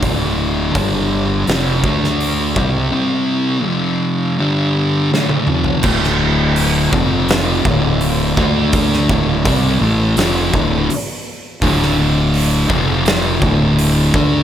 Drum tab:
CC |----------------|----------------|x---------------|----------------|
HH |o---o---o---o---|----------------|----o---o---o---|o---o---o---o---|
SD |--------o--o----|------------o---|-o------o-------|-o------o-------|
T1 |----------------|-------------o--|----------------|----------------|
T2 |----------------|--------------o-|----------------|----------------|
FT |----------------|---------------o|----------------|----------------|
BD |o---o-----o---o-|----------------|o-----o---o---o-|o-o-o-----o-----|

CC |----------------|
HH |o---o---o---o---|
SD |-o------o-------|
T1 |----------------|
T2 |----------------|
FT |----------------|
BD |o-----o---o---o-|